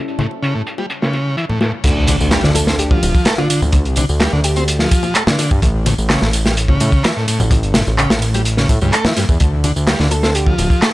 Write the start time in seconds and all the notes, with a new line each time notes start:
Already playing: G3 C#4 E4 A4
0.08 closed hi-hat
0.19 A2, closed hi-hat, high conga
0.31 high bongo
0.42 C#3, closed hi-hat
0.55 A2
0.67 closed hi-hat
0.78 G3, closed hi-hat, high bongo
0.90 closed hi-hat
1.02 C#3, snare
1.13 closed hi-hat, high bongo
1.37 E3, closed hi-hat
1.49 A2, low conga
1.61 A2, snare, closed hi-hat, high bongo
1.84 D2, kick, closed hi-hat, crash, tambourine, impact, high conga
2.07 D3, closed hi-hat, ride, tambourine, high bongo, high conga
2.20 D2, tambourine
2.31 G3, snare, clap, closed hi-hat
2.43 D2 D3, snare
2.55 A4, closed hi-hat, ride, tambourine, high bongo
2.67 C4 A4, snare, tambourine
2.79 G4, closed hi-hat, tambourine
2.91 F3, kick, high bongo
3.03 D1, closed hi-hat, ride, tambourine
3.15 kick, tambourine
3.25 A3, snare, clap, closed hi-hat, tambourine
3.38 D3 F4, high bongo
3.50 D3, closed hi-hat, ride, tambourine
3.62 D2, tambourine, low conga
3.72 kick, closed hi-hat, tambourine, high bongo, high conga
3.85 C2, closed hi-hat
3.96 D3, closed hi-hat, ride, tambourine, high conga
4.09 D2, tambourine
4.20 G3, snare, clap, closed hi-hat, tambourine, high bongo
4.33 D2 D3
4.44 G4, closed hi-hat, ride, tambourine
4.56 C4, closed hi-hat, tambourine, high bongo
4.68 closed hi-hat, tambourine
4.79 F3, snare
4.91 kick, closed hi-hat, ride, tambourine
5.03 tambourine, high bongo
5.15 A3, clap, closed hi-hat, tambourine
5.27 D3, snare, low conga
5.38 D3, snare, closed hi-hat, ride, tambourine, high bongo
5.51 G2, kick, tambourine
5.62 A1, kick, closed hi-hat, tambourine, high conga
5.86 A2, closed hi-hat, ride, tambourine, high bongo, high conga
5.98 A1, tambourine
6.10 C#3, snare, clap, closed hi-hat, tambourine
6.21 A1 A2, snare, high bongo
6.33 closed hi-hat, ride, tambourine
6.45 G3, snare, tambourine
6.57 closed hi-hat, tambourine
6.68 C#3, kick, high bongo
6.80 A2, closed hi-hat, ride, tambourine
6.92 kick, tambourine
7.04 E3, snare, clap, closed hi-hat, tambourine, high bongo
7.16 A2
7.28 A2, closed hi-hat, ride, tambourine
7.40 A1, tambourine, low conga
7.51 kick, closed hi-hat, tambourine, high bongo, high conga
7.63 G1, closed hi-hat
7.74 A2, snare, closed hi-hat, ride, tambourine, high conga
7.87 A1, tambourine, high bongo
7.98 C#3, clap, closed hi-hat, tambourine
8.10 A1 A2, snare, closed hi-hat
8.22 ride, tambourine
8.34 G3, closed hi-hat, tambourine, high bongo
8.45 closed hi-hat, tambourine
8.57 C#3, snare
8.69 A2, kick, closed hi-hat, ride, tambourine, high bongo
8.81 C#2 G2, tambourine
8.93 A3, clap, closed hi-hat, tambourine
9.05 E3, snare, low conga
9.16 G2, snare, closed hi-hat, ride, tambourine, high bongo
9.29 E2, kick, tambourine
9.40 D2, kick, closed hi-hat, tambourine, high conga
9.64 D3, closed hi-hat, ride, tambourine, high bongo, high conga
9.76 D2, tambourine
9.87 G3, snare, clap, closed hi-hat, tambourine
9.99 D2 D3, snare
10.11 A4, closed hi-hat, ride, tambourine, high bongo
10.23 C4 A4, snare, tambourine
10.35 G4, closed hi-hat, tambourine
10.46 F3, kick, high bongo
10.58 D1, closed hi-hat, ride, tambourine
10.70 kick, tambourine
10.82 A3, snare, clap, closed hi-hat, tambourine